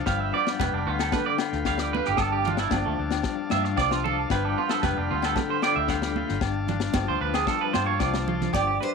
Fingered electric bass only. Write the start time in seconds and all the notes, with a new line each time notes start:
0.07 G1
0.60 F1
0.73 F1
0.86 D2
1.53 D2
2.08 G1
2.18 G1
2.72 G1
2.86 D2
2.99 D2
3.52 G2
3.78 C2
4.30 G1
4.83 F1
4.98 F1
5.11 D2
5.76 D2
6.30 G1
6.42 G1
6.94 G1
7.09 D2
7.21 D2
7.75 G2
8.00 C2
8.54 G1